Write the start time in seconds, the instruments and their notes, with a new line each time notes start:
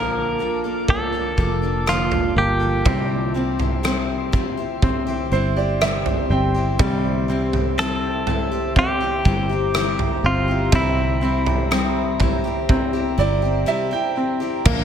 Already playing: fingered electric bass A#1, steel-string acoustic guitar A#2 D3 F3 A#3 D4, grand piano A#3, ambient pad A#3 F4 A5 D6, clean electric guitar A#4
0.39 steel-string acoustic guitar F3 A#3 D4 A4
0.64 steel-string acoustic guitar F3 A#3 D4 A4
0.88 grand piano A#3, clean electric guitar A4, kick, floor tom
1.12 steel-string acoustic guitar F3 A#3 D4 A4
1.37 fingered electric bass F1, steel-string acoustic guitar F3 A#3 D4 A4, kick
1.62 steel-string acoustic guitar F3 A#3 D4 A4
1.86 steel-string acoustic guitar A#2 D3 F3 A#3 D4 A4, clean electric guitar F4, cross-stick
2.11 steel-string acoustic guitar F3 A#3 D4 A4, floor tom
2.36 fingered electric bass G1, grand piano A#3, clean electric guitar G4
2.60 steel-string acoustic guitar F3 A#3 D4 A4
2.84 fingered electric bass C2, steel-string acoustic guitar C3 G3 C4 E4 G4, grand piano C4, ambient pad G4 C5 E5 C6, kick, floor tom
3.34 steel-string acoustic guitar G3 C4 E4 G4, grand piano C4
3.59 steel-string acoustic guitar C4 E4 G4, floor tom
3.83 steel-string acoustic guitar C3 G3 C4 E4 G4, grand piano C4, cross-stick
4.32 steel-string acoustic guitar G3 C4 E4 G4, kick
4.57 steel-string acoustic guitar C4 E4 G4
4.82 grand piano C4, kick, floor tom
5.07 steel-string acoustic guitar C4 E4 G4
5.32 fingered electric bass G1, steel-string acoustic guitar G3 C4 E4 G4, grand piano C5
5.56 steel-string acoustic guitar C4 E4 G4, grand piano D5
5.81 steel-string acoustic guitar C3 G3 C4 E4 G4, grand piano E5, cross-stick
6.06 steel-string acoustic guitar C4 E4 G4, floor tom
6.30 fingered electric bass G1, grand piano C4 G5
6.54 steel-string acoustic guitar C4 E4 G4
6.79 fingered electric bass C2, steel-string acoustic guitar C3 G3 C4 E4 G4, grand piano G3, kick, floor tom
7.28 steel-string acoustic guitar G3 C4 E4 G4, grand piano C4
7.53 steel-string acoustic guitar C4 E4 G4, floor tom
7.78 steel-string acoustic guitar C3 G3 C4 E4, grand piano C4, clean electric guitar A4, cross-stick
8.27 steel-string acoustic guitar G3 C4 E4 G4, floor tom
8.51 steel-string acoustic guitar C4 E4 G4
8.75 grand piano C4, clean electric guitar G4, ambient pad A#5, kick, floor tom
9.00 steel-string acoustic guitar C4 E4 G4
9.25 fingered electric bass G1, steel-string acoustic guitar G3 C4 E4 G4, kick
9.49 steel-string acoustic guitar C4 E4 G4
9.74 steel-string acoustic guitar C3 G3 C4 E4 G4, cross-stick
9.98 steel-string acoustic guitar C4 E4 G4, floor tom
10.24 fingered electric bass G1, grand piano C4, clean electric guitar F4
10.48 steel-string acoustic guitar C4 E4 G4
10.72 fingered electric bass C2, steel-string acoustic guitar C3 G3 C4 E4 G4, grand piano C4, clean electric guitar E4, kick, floor tom
11.21 steel-string acoustic guitar G3 C4 E4 G4, grand piano C4
11.46 steel-string acoustic guitar C4 E4 G4, floor tom
11.71 steel-string acoustic guitar C3 G3 C4 E4 G4, grand piano C4, cross-stick
12.19 steel-string acoustic guitar G3 C4 E4 G4, kick, floor tom
12.44 steel-string acoustic guitar C4 E4 G4
12.69 grand piano C4, kick, floor tom
12.93 steel-string acoustic guitar C4 E4 G4
13.18 fingered electric bass G1, steel-string acoustic guitar G3 C4 E4 G4, grand piano D5
13.42 steel-string acoustic guitar C4 E4 G4
13.66 steel-string acoustic guitar C3 G3 C4 E4 G4, grand piano E5
13.91 steel-string acoustic guitar C4 E4 G4, grand piano G5
14.17 grand piano C4
14.40 steel-string acoustic guitar C4 E4 G4
14.65 fingered electric bass A#1, steel-string acoustic guitar A#2 D3 F3 A#3 D4 A#4, ambient pad A#3 D5 F5 D6, grand piano A#3, kick, floor tom, crash